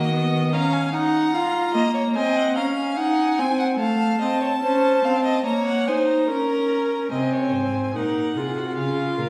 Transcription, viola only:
0, 0, Header, 1, 2, 480
1, 0, Start_track
1, 0, Tempo, 816327
1, 315, Time_signature, 4, 2, 24, 8
1, 1753, Tempo, 828729
1, 5407, End_track
2, 0, Start_track
2, 0, Title_t, "Viola"
2, 0, Program_c, 0, 41
2, 0, Note_on_c, 0, 58, 65
2, 66, Note_off_c, 0, 58, 0
2, 69, Note_on_c, 0, 59, 74
2, 312, Note_on_c, 0, 61, 78
2, 320, Note_off_c, 0, 59, 0
2, 544, Note_off_c, 0, 61, 0
2, 548, Note_on_c, 0, 63, 73
2, 786, Note_off_c, 0, 63, 0
2, 790, Note_on_c, 0, 65, 75
2, 1027, Note_on_c, 0, 58, 66
2, 1036, Note_off_c, 0, 65, 0
2, 1268, Note_on_c, 0, 60, 74
2, 1277, Note_off_c, 0, 58, 0
2, 1508, Note_on_c, 0, 61, 65
2, 1517, Note_off_c, 0, 60, 0
2, 1746, Note_off_c, 0, 61, 0
2, 1749, Note_on_c, 0, 63, 76
2, 1988, Note_on_c, 0, 60, 76
2, 1997, Note_off_c, 0, 63, 0
2, 2220, Note_off_c, 0, 60, 0
2, 2224, Note_on_c, 0, 57, 77
2, 2464, Note_off_c, 0, 57, 0
2, 2466, Note_on_c, 0, 60, 70
2, 2704, Note_off_c, 0, 60, 0
2, 2708, Note_on_c, 0, 61, 75
2, 2944, Note_off_c, 0, 61, 0
2, 2949, Note_on_c, 0, 60, 68
2, 3185, Note_off_c, 0, 60, 0
2, 3188, Note_on_c, 0, 58, 71
2, 3432, Note_on_c, 0, 63, 63
2, 3441, Note_off_c, 0, 58, 0
2, 3667, Note_on_c, 0, 61, 71
2, 3676, Note_off_c, 0, 63, 0
2, 4146, Note_off_c, 0, 61, 0
2, 4150, Note_on_c, 0, 60, 68
2, 4611, Note_off_c, 0, 60, 0
2, 4632, Note_on_c, 0, 63, 60
2, 4872, Note_on_c, 0, 65, 68
2, 4881, Note_off_c, 0, 63, 0
2, 5407, Note_off_c, 0, 65, 0
2, 5407, End_track
0, 0, End_of_file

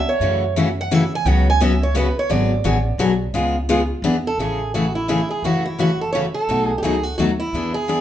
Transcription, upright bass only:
0, 0, Header, 1, 2, 480
1, 0, Start_track
1, 0, Tempo, 348230
1, 296, Time_signature, 3, 2, 24, 8
1, 11037, End_track
2, 0, Start_track
2, 0, Title_t, "Upright bass"
2, 0, Program_c, 0, 32
2, 273, Note_on_c, 0, 42, 89
2, 1431, Note_off_c, 0, 42, 0
2, 1722, Note_on_c, 0, 37, 92
2, 2875, Note_off_c, 0, 37, 0
2, 3168, Note_on_c, 0, 32, 98
2, 3551, Note_off_c, 0, 32, 0
2, 3648, Note_on_c, 0, 33, 89
2, 4055, Note_off_c, 0, 33, 0
2, 4110, Note_on_c, 0, 35, 90
2, 4524, Note_off_c, 0, 35, 0
2, 4603, Note_on_c, 0, 37, 85
2, 5371, Note_off_c, 0, 37, 0
2, 5544, Note_on_c, 0, 40, 94
2, 5936, Note_off_c, 0, 40, 0
2, 6034, Note_on_c, 0, 33, 73
2, 7191, Note_off_c, 0, 33, 0
2, 7477, Note_on_c, 0, 30, 78
2, 8635, Note_off_c, 0, 30, 0
2, 8927, Note_on_c, 0, 35, 79
2, 9313, Note_off_c, 0, 35, 0
2, 9405, Note_on_c, 0, 37, 72
2, 9817, Note_off_c, 0, 37, 0
2, 9895, Note_on_c, 0, 39, 80
2, 10303, Note_off_c, 0, 39, 0
2, 10376, Note_on_c, 0, 40, 75
2, 11037, Note_off_c, 0, 40, 0
2, 11037, End_track
0, 0, End_of_file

